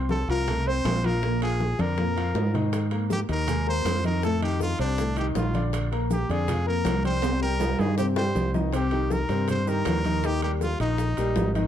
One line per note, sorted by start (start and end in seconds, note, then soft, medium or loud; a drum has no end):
0.00 0.23 C2 medium
0.00 0.23 C4 medium
0.00 0.23 C5 medium
0.00 0.23 C6 medium
0.09 0.28 A4 medium
0.09 high bongo medium
0.09 high conga loud
0.09 low timbale medium
0.28 0.81 C2 loud
0.28 0.45 F3 medium
0.28 0.45 F4 medium
0.28 0.69 A#4 loud
0.28 0.45 F5 medium
0.28 high bongo soft
0.28 high conga soft
0.28 high timbale medium
0.48 0.63 A3 medium
0.48 0.64 A4 medium
0.48 0.64 A5 medium
0.48 high bongo medium
0.48 high conga soft
0.48 low conga medium
0.48 high timbale medium
0.67 0.98 C4 medium
0.67 0.98 C5 medium
0.67 1.07 C5 loud
0.67 0.98 C6 medium
0.67 high bongo soft
0.67 high conga soft
0.85 1.73 A#1 medium
0.85 high bongo medium
0.85 low bongo medium
0.85 high conga medium
0.85 high timbale medium
0.85 low timbale medium
1.04 1.19 F3 medium
1.04 1.20 F4 medium
1.04 1.42 A#4 medium
1.04 1.20 F5 medium
1.04 high conga medium
1.04 high timbale medium
1.23 1.38 A#2 medium
1.23 1.39 A#3 medium
1.23 1.39 A#4 medium
1.23 high bongo medium
1.41 1.72 F3 medium
1.41 1.73 F4 medium
1.41 1.82 G#4 medium
1.41 1.73 F5 medium
1.41 high bongo soft
1.41 high conga soft
1.41 high timbale medium
1.60 high bongo medium
1.60 high conga medium
1.60 low timbale medium
1.79 2.32 F2 medium
1.79 1.94 D3 medium
1.79 1.95 D4 medium
1.79 2.55 A#4 medium
1.79 1.95 D5 medium
1.79 high bongo soft
1.79 high conga medium
1.79 high timbale medium
1.97 2.13 A#2 medium
1.97 2.13 A#3 medium
1.97 2.14 A#4 medium
1.97 high bongo medium
1.97 high conga medium
2.16 2.47 F3 medium
2.16 2.47 F4 medium
2.16 2.48 F5 medium
2.16 high timbale medium
2.35 3.23 G#2 medium
2.35 high bongo medium
2.35 low bongo medium
2.35 low timbale medium
2.54 2.85 D#3 medium
2.54 2.85 D#4 medium
2.54 2.85 D#5 medium
2.54 high bongo soft
2.54 low conga medium
2.54 high timbale medium
2.73 high bongo medium
2.73 high conga soft
2.73 high timbale medium
2.73 maracas medium
2.91 3.22 A#3 medium
2.91 3.22 A#4 medium
2.91 3.23 A#5 medium
2.91 high bongo soft
2.91 high conga soft
2.91 high timbale medium
3.10 3.20 G4 loud
3.10 high bongo medium
3.10 high conga medium
3.10 low timbale medium
3.10 maracas medium
3.28 3.82 D#2 loud
3.28 3.44 D#3 medium
3.28 3.44 D#4 medium
3.28 3.66 A#4 loud
3.28 3.45 D#5 medium
3.28 high bongo soft
3.28 high conga soft
3.28 high timbale medium
3.28 maracas soft
3.47 3.63 G#3 medium
3.47 3.63 G#4 medium
3.47 3.64 G#5 medium
3.47 high bongo medium
3.47 high conga soft
3.47 low conga medium
3.47 high timbale medium
3.47 maracas medium
3.67 3.98 A#3 medium
3.67 3.97 A#4 medium
3.67 4.03 C5 loud
3.67 3.98 A#5 medium
3.67 high bongo soft
3.67 high conga soft
3.85 4.73 F2 loud
3.85 high bongo medium
3.85 low bongo medium
3.85 high conga medium
3.85 high timbale medium
3.85 low timbale medium
3.85 maracas medium
4.04 4.20 D#3 medium
4.04 4.20 D#4 medium
4.04 4.23 A#4 medium
4.04 4.20 D#5 medium
4.04 high conga medium
4.04 high timbale medium
4.04 maracas soft
4.23 4.39 A2 medium
4.23 4.39 A3 medium
4.23 4.39 A4 medium
4.23 4.41 A4 loud
4.23 high bongo medium
4.23 high conga soft
4.23 maracas medium
4.42 4.73 D#3 medium
4.42 4.73 D#4 medium
4.42 4.60 G4 medium
4.42 4.73 D#5 medium
4.42 high bongo soft
4.42 high conga soft
4.42 high timbale medium
4.60 4.79 F4 medium
4.60 high bongo medium
4.60 high conga medium
4.60 low timbale medium
4.60 maracas medium
4.79 5.32 C2 loud
4.79 4.95 C3 medium
4.79 4.95 C4 medium
4.79 5.15 D4 medium
4.79 4.95 C5 medium
4.79 high bongo soft
4.79 high conga soft
4.79 high timbale medium
4.79 maracas soft
4.98 5.14 A2 medium
4.98 5.14 A3 medium
4.98 5.14 A4 medium
4.98 high bongo medium
4.98 high conga soft
4.98 maracas medium
5.16 5.48 D#3 medium
5.16 5.48 D#4 medium
5.16 5.27 G4 medium
5.16 5.48 D#5 medium
5.16 high conga soft
5.16 high timbale medium
5.16 maracas medium
5.35 6.24 A#1 medium
5.35 5.63 F4 medium
5.35 high bongo medium
5.35 low bongo medium
5.35 high conga medium
5.35 low timbale medium
5.35 maracas medium
5.54 5.85 D3 medium
5.54 5.85 D4 medium
5.54 5.85 D5 medium
5.54 high bongo soft
5.54 high conga medium
5.54 high timbale medium
5.54 maracas soft
5.73 high bongo medium
5.73 high conga soft
5.73 high timbale loud
5.73 maracas medium
5.92 6.23 A#3 medium
5.92 6.23 A#4 medium
5.92 6.23 A#5 medium
5.92 high bongo soft
5.92 high conga soft
5.92 high timbale medium
6.11 6.33 G4 medium
6.11 high bongo medium
6.11 high conga medium
6.11 low timbale medium
6.11 maracas medium
6.29 6.82 F2 loud
6.29 6.45 D3 medium
6.29 6.45 D4 medium
6.29 6.67 G#4 medium
6.29 6.45 D5 medium
6.29 high bongo soft
6.29 high timbale medium
6.29 maracas soft
6.48 6.64 F3 medium
6.48 6.64 F4 medium
6.48 6.64 F5 medium
6.48 high bongo medium
6.48 high conga soft
6.48 low conga medium
6.48 high timbale medium
6.48 maracas medium
6.66 6.98 A#3 medium
6.66 6.98 A#4 medium
6.66 7.03 A#4 loud
6.66 6.98 A#5 medium
6.66 high bongo soft
6.66 high conga soft
6.85 7.74 C2 medium
6.85 high bongo medium
6.85 low bongo medium
6.85 high conga medium
6.85 high timbale medium
6.85 low timbale medium
6.85 maracas medium
7.04 7.20 G3 medium
7.04 7.20 G4 medium
7.04 7.40 C5 loud
7.04 7.20 G5 medium
7.04 high conga medium
7.04 high timbale medium
7.04 maracas soft
7.22 7.38 C3 medium
7.22 7.39 C4 medium
7.22 7.39 C5 medium
7.22 high bongo medium
7.22 high timbale medium
7.22 maracas medium
7.41 7.72 G3 medium
7.41 7.73 G4 medium
7.41 7.81 A#4 medium
7.41 7.73 G5 medium
7.41 high bongo soft
7.41 high conga soft
7.60 high bongo medium
7.60 high conga medium
7.60 low timbale loud
7.60 maracas medium
7.79 8.32 G2 medium
7.79 7.95 D#3 medium
7.79 7.95 D#4 medium
7.79 7.97 G#4 medium
7.79 7.95 D#5 medium
7.79 high bongo soft
7.79 low timbale loud
7.79 maracas soft
7.98 8.14 C3 medium
7.98 8.14 C4 medium
7.98 8.06 G4 medium
7.98 8.14 C5 medium
7.98 high bongo medium
7.98 high conga soft
7.98 maracas medium
8.16 8.48 G3 medium
8.16 8.48 G4 medium
8.16 8.52 C5 medium
8.16 8.48 G5 medium
8.16 high bongo loud
8.16 high conga soft
8.16 low timbale medium
8.35 9.24 C2 medium
8.35 low bongo medium
8.35 high conga medium
8.35 low timbale medium
8.35 maracas medium
8.54 8.70 D#3 medium
8.54 8.70 D#4 medium
8.54 8.70 D#5 medium
8.54 low bongo medium
8.54 high conga medium
8.54 low timbale medium
8.54 maracas soft
8.73 8.88 C3 medium
8.73 8.89 C4 medium
8.73 9.14 G4 loud
8.73 8.89 C5 medium
8.73 high bongo medium
8.73 high conga soft
8.73 high timbale medium
8.73 maracas medium
8.91 9.23 D#3 medium
8.91 9.23 D#4 medium
8.91 9.23 G4 medium
8.91 high bongo soft
8.91 high conga soft
8.91 high timbale medium
9.10 9.49 A#4 medium
9.10 high bongo medium
9.10 high conga medium
9.10 low timbale medium
9.10 maracas medium
9.29 9.82 G2 medium
9.29 9.60 C3 medium
9.29 9.60 C4 medium
9.29 9.61 C5 medium
9.29 high bongo soft
9.29 high conga soft
9.29 high timbale medium
9.29 maracas soft
9.48 9.70 C5 medium
9.48 high bongo medium
9.48 high conga soft
9.48 low conga medium
9.48 high timbale medium
9.48 maracas medium
9.67 9.98 D#3 medium
9.67 9.98 D#4 medium
9.67 9.98 G4 medium
9.67 10.27 A#4 medium
9.67 high bongo soft
9.67 high conga soft
9.67 maracas medium
9.85 10.74 D#2 medium
9.85 high bongo medium
9.85 low bongo medium
9.85 high conga medium
9.85 high timbale medium
9.85 low timbale medium
9.85 maracas medium
10.05 10.20 D#3 medium
10.05 10.21 D#4 medium
10.05 10.21 D#5 medium
10.05 high conga medium
10.05 high timbale medium
10.05 maracas soft
10.24 10.39 D#3 medium
10.24 10.39 D#4 medium
10.24 10.43 G4 loud
10.24 10.40 D#5 medium
10.24 high bongo medium
10.24 high conga soft
10.24 maracas medium
10.42 10.73 G3 medium
10.42 10.73 G4 medium
10.42 10.52 G4 medium
10.42 10.74 A#4 medium
10.42 high bongo soft
10.42 high conga soft
10.42 high timbale medium
10.61 10.80 F4 medium
10.61 high bongo medium
10.61 high conga medium
10.61 low timbale medium
10.61 maracas medium
10.80 11.15 A#1 medium
10.80 11.11 D#3 medium
10.80 11.11 D#4 medium
10.80 11.52 D#4 medium
10.80 11.11 D#5 medium
10.80 high bongo soft
10.80 high conga soft
10.80 high timbale medium
10.80 maracas soft
10.98 high bongo medium
10.98 high conga soft
10.98 maracas medium
11.17 11.35 A#1 medium
11.17 11.48 G3 medium
11.17 11.49 G4 medium
11.17 11.49 A#4 medium
11.17 high conga soft
11.17 high timbale medium
11.17 maracas medium
11.36 11.67 G#1 medium
11.36 high bongo medium
11.36 low bongo medium
11.36 high conga medium
11.36 low timbale medium
11.36 maracas medium
11.54 11.67 D#3 medium
11.54 11.67 D#4 medium
11.54 11.67 D#5 medium
11.54 high bongo soft
11.54 high conga medium
11.54 high timbale medium
11.54 maracas soft